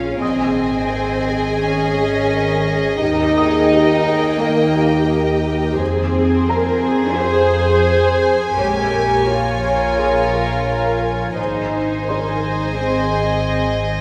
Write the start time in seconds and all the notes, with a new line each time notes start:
Already playing: A#1 C#4 F4 G#4 C#5 F5 F6
0.21 G#1 C4 G#4 D#5 G#5 D#6
0.92 C5
1.26 G#4
1.61 C#4
2.31 A#4
2.66 G#4
3.00 D#2 D#4 G4 A#4 G5
3.36 G#4 D#6
3.71 G4
4.06 G#4
4.40 A#3 A#4
4.75 G4
5.79 F2 C4 G#4 C5 G#5
6.49 A#4 A#5
6.84 G#4
7.18 G#4 C5
8.57 A#1 G#3 G4 A#4 C#5
9.28 F4 C#5
9.98 G#4 C#5
10.32 A#4
11.36 G#1 D#4 G#4 C5 D#5 G#5
12.08 A#4 C5 C6
12.43 G#4
12.76 C4 G#4 C5